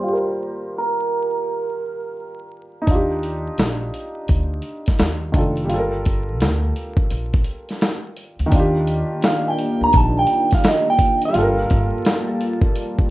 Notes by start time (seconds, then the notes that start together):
Already playing: C5
0.00 G3 F4
0.08 G4
0.13 A#4
0.78 A#4
2.82 D#4
2.86 D#2 D4, kick, closed hi-hat
2.90 F4
2.95 G4
3.23 closed hi-hat
3.58 A#1, snare, closed hi-hat
3.94 closed hi-hat
4.28 D2, kick, closed hi-hat
4.62 closed hi-hat
4.86 kick, snare, closed hi-hat
4.99 D#2, snare, closed hi-hat
5.32 F1 D#3 D4, kick, closed hi-hat
5.37 F4 A4
5.57 closed hi-hat
5.64 G3
5.69 G1 F4, closed hi-hat
5.74 A4
5.78 A#4
6.05 kick, closed hi-hat
6.40 D2, snare, closed hi-hat
6.76 closed hi-hat
6.97 kick
7.11 A#1, closed hi-hat
7.34 kick
7.44 closed hi-hat
7.69 snare, closed hi-hat
7.81 snare, closed hi-hat
8.17 closed hi-hat
8.39 D2, closed hi-hat
8.46 D#3
8.51 D#2 D#3 A#3 D4 F4 G4, kick, closed hi-hat
8.55 F4
8.60 G4
8.87 closed hi-hat
9.22 F5, snare, closed hi-hat
9.48 G5
9.58 closed hi-hat
9.81 D2 A#5
9.93 A#1, kick, closed hi-hat
9.97 A5
10.19 G5
10.27 closed hi-hat
10.51 F5, kick, snare, closed hi-hat
10.64 D#5, snare, closed hi-hat
10.90 G5
10.99 kick, closed hi-hat
11.22 F5, closed hi-hat
11.29 G3
11.33 G1 G3 A#3 F4 A5, closed hi-hat
11.37 A4
11.42 A#4
11.70 G1, kick, closed hi-hat
12.05 snare, closed hi-hat
12.41 closed hi-hat
12.62 kick
12.76 closed hi-hat
12.99 kick